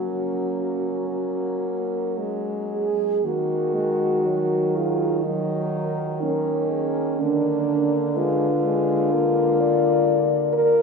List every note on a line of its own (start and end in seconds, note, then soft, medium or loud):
0.00 2.88 F#3 soft
0.00 1.05 A#3 soft
0.00 2.55 C#4 soft
0.00 2.18 F#4 soft
1.09 2.20 A#3 soft
2.18 3.23 G#3 soft
2.72 3.27 G#4 soft
3.24 7.23 D#3 soft
3.24 3.76 A#3 soft
3.24 4.77 F#4 soft
3.24 4.21 A#4 soft
3.74 4.26 G#3 soft
4.25 5.25 F#3 soft
4.25 4.78 A#4 soft
4.76 5.26 F4 medium
4.76 5.25 G#4 soft
5.25 6.22 F#3 soft
5.25 6.22 D#4 medium
5.25 6.22 A#4 soft
6.23 7.19 A#3 soft
6.23 7.21 C#4 medium
6.23 6.73 A#4 soft
6.71 7.22 G#4 soft
7.20 10.76 D3 soft
7.20 8.18 A#3 soft
7.20 8.18 D4 medium
7.20 8.17 A#4 soft
8.15 8.51 G#3 soft
8.15 10.36 F4 medium
8.15 9.15 B4 soft
8.65 9.12 G#3 medium
9.14 10.73 A#3 medium
9.14 9.62 A#4 medium
9.60 10.76 D5 medium
10.53 10.82 A#4 medium